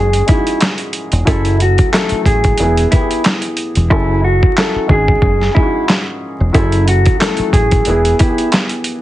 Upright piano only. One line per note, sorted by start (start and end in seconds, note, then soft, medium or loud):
0.00 0.15 G#2 medium
0.00 0.15 G#3 medium
0.00 0.16 C#4 medium
0.00 0.16 F#4 medium
0.00 0.16 G#4 loud
0.26 0.93 G#2 medium
0.26 0.94 G#3 medium
0.26 0.94 C#4 medium
0.26 0.35 F4 medium
0.26 0.95 G#4 medium
0.35 0.98 F#4 medium
1.25 1.71 F#3 medium
1.25 1.71 C#4 medium
1.25 1.72 E4 medium
1.25 1.72 G#4 medium
1.25 1.72 A4 medium
1.92 2.59 F#3 medium
1.92 2.60 A3 medium
1.92 2.59 C#4 medium
1.92 2.59 E4 medium
1.92 2.59 F#4 medium
2.60 2.86 B3 medium
2.60 2.87 E4 medium
2.60 2.88 G#4 medium
2.92 3.58 B3 medium
2.92 3.59 E4 medium
2.92 3.00 G4 medium
3.01 3.63 G#4 medium
3.90 4.36 F#3 medium
3.90 4.36 C#4 medium
3.90 4.36 E4 medium
3.90 4.37 G#4 medium
3.90 4.37 A4 medium
4.57 4.90 F#3 medium
4.57 4.87 C#4 medium
4.57 4.91 E4 medium
4.57 4.87 F#4 medium
4.57 4.91 A4 medium
4.87 5.42 G#2 medium
4.87 5.43 G#3 medium
4.87 5.43 C#4 medium
4.87 5.43 F#4 medium
4.87 5.44 G#4 medium
5.54 6.21 G#2 medium
5.54 6.21 G#3 medium
5.54 6.22 C#4 medium
5.54 5.63 F4 medium
5.54 6.22 G#4 medium
5.62 6.25 F#4 medium
6.53 6.99 F#3 medium
6.53 6.99 C#4 medium
6.53 6.99 E4 medium
6.53 7.00 G#4 medium
6.53 7.00 A4 medium
7.20 7.86 F#3 medium
7.20 7.87 A3 medium
7.20 7.86 C#4 medium
7.20 7.87 E4 medium
7.20 7.87 F#4 medium
7.87 8.14 B3 medium
7.87 8.14 E4 medium
7.87 8.15 G#4 medium
8.20 8.86 B3 medium
8.20 8.86 E4 medium
8.20 8.28 G4 medium
8.28 8.90 G#4 medium